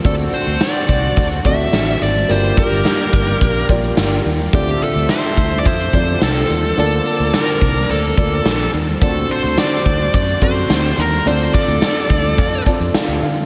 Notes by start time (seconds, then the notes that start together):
Already playing: D3 C4
0.04 D2 D3 A3 C4 D4 F#4 A4 D5, kick, closed hi-hat
0.19 closed hi-hat
0.33 C5, closed hi-hat
0.47 D2, closed hi-hat
0.61 D5, snare, tambourine
0.75 closed hi-hat
0.89 C2, kick, closed hi-hat
1.03 closed hi-hat
1.17 D2 D5, kick, closed hi-hat
1.31 closed hi-hat
1.44 D2 C4 F#4 A4 D5 E5, kick, closed hi-hat
1.60 closed hi-hat
1.73 A1, snare, tambourine
1.88 closed hi-hat
2.01 G#1 D5, closed hi-hat
2.16 closed hi-hat
2.29 G1 G2 G3 A#3 D4 F4 G4 A#4 C5 D5, closed hi-hat
2.43 closed hi-hat
2.57 A#4, kick, closed hi-hat
2.71 G1, closed hi-hat
2.85 snare, tambourine
2.99 closed hi-hat
3.13 G1, kick, closed hi-hat
3.27 closed hi-hat
3.41 A#1, kick, closed hi-hat
3.55 closed hi-hat
3.69 A#1 A#3 F4 G4 D5, kick, closed hi-hat
3.83 closed hi-hat
3.97 G1, snare, tambourine
4.12 closed hi-hat
4.25 D#2, open hi-hat
4.39 closed hi-hat
4.53 D2 D3 A3 C4 F4 G4 A4 C5 D5 E5, kick, closed hi-hat
4.67 closed hi-hat
4.81 A4, closed hi-hat
4.95 D2, closed hi-hat
5.09 C5, snare, tambourine
5.23 closed hi-hat
5.37 D2, kick, closed hi-hat
5.52 closed hi-hat
5.60 D5
5.65 F2 C5, kick, closed hi-hat
5.79 closed hi-hat
5.93 F2 C4 F4 A4 D5, kick, closed hi-hat
6.08 closed hi-hat
6.22 C2 A4, snare, tambourine
6.36 closed hi-hat
6.49 D#2, closed hi-hat
6.64 closed hi-hat
6.77 D2 D3 A#3 D4 F4 A4 D5 A5, closed hi-hat
6.92 closed hi-hat
7.06 closed hi-hat
7.20 D2, closed hi-hat
7.34 A#4, snare, tambourine
7.48 closed hi-hat
7.61 C2, kick, closed hi-hat
7.76 closed hi-hat
7.90 D2 A4, closed hi-hat
8.03 closed hi-hat
8.17 D2 A#3 F4 A4 D5, kick, closed hi-hat
8.32 closed hi-hat
8.45 A#1, snare, tambourine
8.60 closed hi-hat
8.73 D#2, closed hi-hat
8.88 closed hi-hat
9.01 D2 D3 A3 C4 F4 F#4 A4 C5 D5, kick, closed hi-hat
9.08 F#4
9.16 closed hi-hat
9.30 C5, closed hi-hat
9.44 D2, closed hi-hat
9.58 D5, snare, tambourine
9.72 closed hi-hat
9.86 D2, kick, closed hi-hat
10.00 closed hi-hat
10.14 F#2 D5, kick, closed hi-hat
10.28 closed hi-hat
10.41 F#2 C4 F#4 A4 C5 D5, kick, closed hi-hat
10.56 closed hi-hat
10.70 D2, snare, tambourine
10.84 closed hi-hat
10.98 D#2 A#4, closed hi-hat
11.12 closed hi-hat
11.25 D2 D3 C4 D4 F4 A4 C5 D5, closed hi-hat
11.40 closed hi-hat
11.54 D5, kick, closed hi-hat
11.68 D2, closed hi-hat
11.82 snare, tambourine
11.96 closed hi-hat
12.10 D2, kick, closed hi-hat
12.24 closed hi-hat
12.38 F2, kick, closed hi-hat
12.52 closed hi-hat
12.66 C4 F4 A4 D5 A5, muted fingered electric bass stroke, kick, closed hi-hat
12.80 F2, closed hi-hat
12.94 F5, muted fingered electric bass stroke, snare, tambourine
13.08 D2, closed hi-hat
13.22 D3 F5, open hi-hat
13.37 closed hi-hat